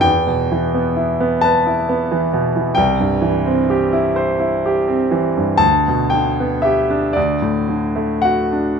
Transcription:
X:1
M:6/8
L:1/16
Q:3/8=42
K:Clyd
V:1 name="Grand piano"
g6 a6 | g4 z8 | a2 g2 e2 d4 f2 |]
V:2 name="Grand piano"
E,, B,, E, B, E B, B E B, E, B,, E, | C,, G,, E, C G E c E G C E, G,, | D,, B,, D, B, G D D,, A,, D, A, F D |]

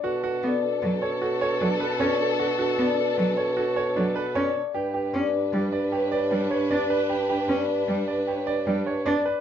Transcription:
X:1
M:6/4
L:1/8
Q:1/4=153
K:Bm
V:1 name="Harp"
[Bdf]2 d2 B2 c2 f2 d2 | f2 d2 B2 c2 f2 d2 | g2 d2 B2 c2 g2 d2 | g2 d2 B2 c2 g2 d2 |]
V:2 name="Grand piano"
F F z3 c F c D B c z | F F z3 c F c D B c z | G G z3 d G d D c d B | G G z3 d G d D c d B |]
V:3 name="Alto flute"
A A A A A A A A A A A A | A A A A A A A A A A A z | B B B B B B B B B B B B | B B B B B B B B B B B z |]
V:4 name="String section"
[DA]12- | [DA]8- [DA]3 z | [DB]12- | [DB]8- [DB]3 z |]
V:5 name="Cello"
z2 B, z F, z3 F, z C z | z2 B, z F, z3 F, z C z | z2 C z G, z3 G, z D z | z2 C z G, z3 G, z D z |]
V:6 name="Bassoon" clef=bass
B,,12- | B,,12 | G,,12- | G,,12 |]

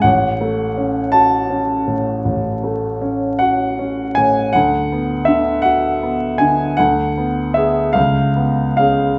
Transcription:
X:1
M:12/8
L:1/8
Q:3/8=53
K:F#m
V:1 name="Grand piano"
f3 a6 f2 g | f2 e f2 g f2 e ^e2 e |]
V:2 name="Grand piano"
A,,, A, C F C A,, A,,, A, C F C A,, | D,, B, D, F B, D, D,, B, [B,G] C,, B, [CG] |]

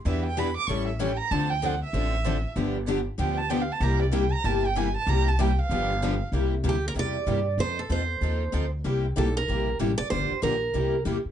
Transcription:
X:1
M:4/4
L:1/16
Q:"Swing" 1/4=191
K:Cmix
V:1 name="Violin"
e2 g2 =b2 d'2 ^c'2 e2 g2 _b2 | a2 g2 ^f2 e8- e2 | z8 g2 a2 (3g2 f2 a2 | b2 d2 g2 b2 a2 g2 _a2 =a2 |
b2 a2 g2 f8- f z | z16 | z16 | z16 |
z16 |]
V:2 name="Steel-string acoustic guitar"
z16 | z16 | z16 | z16 |
z16 | z4 G2 B2 d8 | c2 A2 c8- c2 z2 | z4 A2 B6 z2 d2 |
c4 B8 z4 |]
V:3 name="Steel-string acoustic guitar"
[E,=B,DG]2 z2 [E,B,DG]2 z2 [E,G,^CEA]2 z2 [E,G,CEA]2 z2 | [D,F,CDA]2 z2 [D,F,CDA]2 z2 [D,F,CDA]2 z2 [D,F,CDA]2 z2 | [D,F,=B,DG]2 z2 [D,F,B,DG]2 z2 [D,F,B,DG]2 z2 [D,F,B,DG]2 z2 | [C,G,B,EG]2 z2 [C,G,B,EG]2 z2 [C,G,B,EG]2 z2 [C,G,B,EG]2 z2 |
[C,G,B,EG]2 z2 [C,G,B,EG]2 z2 [D,F,=B,DG]2 z2 [D,F,B,DG]2 z2 | [C,G,B,EG]2 z2 [C,G,B,EG]2 z2 [C,G,B,EG]2 z2 [C,G,B,EG]2 z2 | [F,C_EA]2 z2 [F,CEA]2 z2 [F,CEA]2 z2 [F,CEA]2 z2 | [C,G,B,EG]2 z2 [C,G,B,EG]2 z2 [C,G,B,EG]2 z2 [C,G,B,EG]2 z2 |
[D,F,B,DG]2 z2 [D,F,B,DG]2 z2 [C,G,B,EG]2 z2 [C,G,B,EG]2 z2 |]
V:4 name="Steel-string acoustic guitar"
[E,G,DE=B]2 z2 [E,G,DEB]2 z2 [E,G,^CEA]2 z2 [E,G,CEA]2 z2 | [D,F,CDA]2 z2 [D,F,CDA]2 z2 [D,F,CDA]2 z2 [D,F,CDA]2 z2 | [D,F,=B,DG]2 z2 [D,F,B,DG]2 z2 [D,F,B,DG]2 z2 [D,F,B,DG]2 z2 | [C,G,B,EG]2 z2 [C,G,B,EG]2 z2 [C,G,B,EG]2 z2 [C,G,B,EG]2 z2 |
[C,G,B,EG]2 z2 [C,G,B,EG]2 z2 [D,F,=B,DG]2 z2 [D,F,B,DG]2 z2 | [C,G,B,EG]2 z2 [C,G,B,EG]2 z2 [C,G,B,EG]2 z2 [C,G,B,EG]2 z2 | [F,C_EA]2 z2 [F,CEA]2 z2 [F,CEA]2 z2 [F,CEA]2 z2 | [C,G,B,EG]2 z2 [C,G,B,EG]2 z2 [C,G,B,EG]2 z2 [C,G,B,EG]2 z2 |
[D,F,B,DG]2 z2 [D,F,B,DG]2 z2 [C,G,B,EG]2 z2 [C,G,B,EG]2 z2 |]
V:5 name="Upright bass" clef=bass
E,,8 A,,,8 | D,,8 A,,,8 | G,,,8 D,,8 | C,,8 G,,,8 |
C,,8 G,,,8 | C,,4 D,,4 E,,4 G,,4 | F,,4 E,,4 _E,,4 D,,4 | C,,4 =B,,,4 _B,,,4 A,,,2 z2 |
G,,,2 z2 B,,,4 C,,4 E,,2 z2 |]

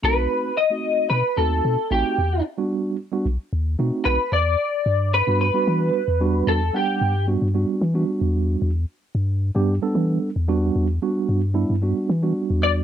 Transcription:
X:1
M:4/4
L:1/16
Q:1/4=112
K:Bphr
V:1 name="Clean electric guitar"
B4 ^d4 B2 A4 G2- | G2 z12 B2 | [K:Em] d6 B2 B8 | A2 G4 z8 z2 |
z16 | z12 z2 d2 |]
V:2 name="Tine electric piano"
[A,C^DF]3 z2 [A,CDF]3 z2 [A,CDF]3 z [A,CDF]2 | z3 [G,B,DF]3 z [G,B,DF] z4 [A,C^DF]3 z | [K:Em] z6 z [G,B,DF] z [G,B,DF]3 z2 [G,B,DF]2- | [G,B,DF] z [G,B,Df]3 z [G,B,DF] z [G,B,DF]2 z [G,B,DF]4- [G,B,DF]- |
[G,B,DF] z6 [G,B,DG] z [G,B,DA]3 z2 [G,B,DF]2- | [G,B,DF] z [G,B,DF]3 z [G,B,DE] z [G,B,DF]2 z [G,B,DF]4- [G,B,DF] |]
V:3 name="Sub bass" clef=bass
B,,,2 z6 B,, z ^D,,2 B,, z A,,, z | E,,2 z6 B,,, z ^D,,2 B,, z B,,, z | [K:Em] E,,2 z2 G,,3 G,,2 z E,2 z E,,3 | E,,2 z2 G,,3 G,,2 z E,2 z E,,3 |
E,,2 z2 G,,3 G,,2 z E,2 z E,,3 | E,,2 z2 G,,3 G,,2 z E,2 z E,,3 |]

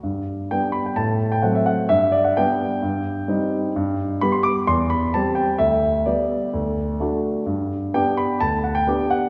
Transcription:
X:1
M:4/4
L:1/16
Q:1/4=128
K:G
V:1 name="Grand piano"
z4 g2 b g a3 g f e f2 | e2 d f g8- g2 z2 | z4 b c' d'2 c'2 b2 a2 g2 | e4 d8 z4 |
z4 g2 b2 a2 f g3 f2 |]
V:2 name="Grand piano"
G,,4 [G,B,D]4 A,,4 [F,A,C]4 | G,,4 [G,B,D]4 G,,4 [G,C_E]4 | G,,4 [G,B,G]4 E,,4 [G,CG]4 | D,,4 [G,B,G]4 D,,4 [A,DF]4 |
G,,4 [B,DG]4 D,,4 [B,DG]4 |]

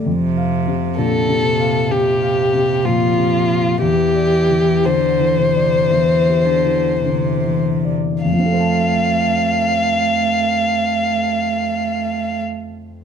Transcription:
X:1
M:4/4
L:1/8
Q:1/4=55
K:F
V:1 name="Violin"
z2 A2 G2 F2 | G2 c4- c z | f8 |]
V:2 name="Grand piano" clef=bass
(3F,, f C, (3B,, C, f (3C, f C, (3B,, C, f | (3E,, d E, (3D, E, d (3E,, G E, (3D, E, d | [F,,F,CAca]8 |]
V:3 name="Cello" clef=bass
C,2 D, C, C,2 F,2 | E,2 D, C, E, D, C,2 | A,8 |]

